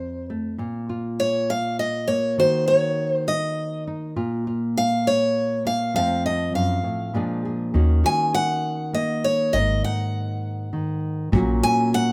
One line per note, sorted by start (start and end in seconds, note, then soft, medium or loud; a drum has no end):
0.00 0.59 F2 medium
0.00 0.56 A4 soft
0.00 0.26 C5 medium
0.30 0.56 A3 soft
0.58 2.38 A#2 medium
0.58 0.88 F4 soft
0.89 2.38 F4 soft
1.20 1.50 C#5 medium
1.50 1.79 F5 medium
1.79 2.09 D#5 medium
2.08 5.58 A#3 soft
2.08 2.36 C#5 medium
2.38 4.17 D#3 medium
2.38 2.67 F#4 medium
2.38 2.67 C5 medium
2.68 4.14 F#4 soft
2.68 3.12 C#5 medium
3.12 3.29 C5 medium
3.28 3.83 D#5 medium
3.87 4.13 D#4 soft
4.16 5.95 A#2 medium
4.16 4.47 F4 medium
4.47 5.96 F4 soft
4.77 5.08 F5 medium
5.07 5.62 C#5 medium
5.65 5.92 A#3 soft
5.65 5.95 F5 medium
5.94 6.54 F2 medium
5.94 7.11 F3 soft
5.94 7.12 A3 soft
5.94 7.15 C4 soft
5.94 6.24 A4 soft
5.94 6.25 F5 medium
6.25 7.11 A4 soft
6.25 6.55 D#5 medium
6.54 6.83 F#2 soft
6.54 7.41 F5 medium
6.83 7.14 A2 soft
7.14 7.74 A#2 medium
7.14 7.71 F3 soft
7.14 7.74 G#3 soft
7.14 7.71 D4 soft
7.14 7.44 G#4 soft
7.45 7.71 G#4 soft
7.74 8.02 D#2 medium
7.74 10.72 D#3 medium
7.74 8.92 A#3 soft
7.74 9.50 C#4 soft
7.74 8.04 F#4 soft
8.04 9.57 F#4 soft
8.04 8.34 G#5 medium
8.34 8.94 F#5 medium
8.93 9.50 A#3 medium
8.93 9.25 D#5 medium
9.24 9.55 C#5 medium
9.53 9.81 G#1 medium
9.53 11.30 G#2 medium
9.53 9.84 D#5 medium
9.84 11.30 D#4 soft
9.84 10.99 F#5 medium
10.73 11.32 D#3 medium
11.32 11.60 A#1 medium
11.32 12.12 A#2 medium
11.32 12.12 F#3 soft
11.32 12.12 A#3 soft
11.32 11.62 C#4 medium
11.32 12.12 F#4 medium
11.32 kick medium
11.32 closed hi-hat soft
11.63 12.12 C#4 soft
11.63 11.94 G#5 medium
11.93 12.12 F#5 medium
11.93 closed hi-hat soft